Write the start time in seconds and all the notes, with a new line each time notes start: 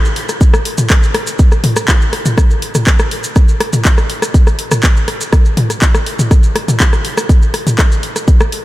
0.05 maracas
0.16 open hi-hat
0.29 cross-stick, closed hi-hat, maracas
0.41 kick, closed hi-hat, maracas
0.54 cross-stick, maracas
0.65 open hi-hat
0.78 closed hi-hat, mid tom, maracas
0.90 kick, cross-stick, clap, closed hi-hat, maracas
1.03 maracas
1.15 cross-stick, open hi-hat
1.27 closed hi-hat, maracas
1.39 kick, closed hi-hat, maracas
1.52 cross-stick, maracas
1.64 open hi-hat, mid tom
1.76 cross-stick, closed hi-hat, maracas
1.88 kick, clap, closed hi-hat, maracas
2.02 maracas
2.13 cross-stick, open hi-hat
2.25 closed hi-hat, mid tom, maracas
2.38 kick, cross-stick, closed hi-hat, maracas
2.50 maracas
2.62 open hi-hat
2.75 cross-stick, closed hi-hat, mid tom, maracas
2.87 kick, clap, closed hi-hat, maracas
2.99 cross-stick, maracas
3.11 open hi-hat
3.24 closed hi-hat, maracas
3.36 kick, cross-stick, closed hi-hat, maracas
3.48 maracas
3.60 cross-stick, open hi-hat
3.73 closed hi-hat, mid tom, maracas
3.85 kick, clap, closed hi-hat, maracas
3.98 cross-stick, maracas
4.10 open hi-hat
4.22 cross-stick, closed hi-hat, maracas
4.34 kick, closed hi-hat, maracas
4.47 cross-stick, maracas
4.59 open hi-hat
4.71 cross-stick, closed hi-hat, mid tom, maracas
4.83 kick, clap, closed hi-hat, maracas
4.97 maracas
5.08 cross-stick, open hi-hat
5.21 closed hi-hat, maracas
5.33 kick, cross-stick, closed hi-hat, maracas
5.45 maracas
5.57 open hi-hat, mid tom
5.70 cross-stick, closed hi-hat, maracas
5.82 kick, clap, closed hi-hat, maracas
5.95 cross-stick, maracas
6.06 open hi-hat
6.19 closed hi-hat, mid tom, maracas
6.31 kick, cross-stick, closed hi-hat, maracas
6.43 maracas
6.56 cross-stick, open hi-hat
6.68 closed hi-hat, mid tom, maracas
6.80 kick, clap, closed hi-hat, maracas
6.93 cross-stick, maracas
7.05 open hi-hat
7.17 cross-stick, closed hi-hat, maracas
7.29 kick, closed hi-hat, maracas
7.42 maracas
7.54 cross-stick, open hi-hat
7.67 closed hi-hat, mid tom, maracas
7.79 kick, cross-stick, clap, closed hi-hat, maracas
7.92 maracas
8.03 open hi-hat
8.16 cross-stick, closed hi-hat, maracas
8.28 kick, closed hi-hat, maracas
8.40 cross-stick, maracas
8.52 open hi-hat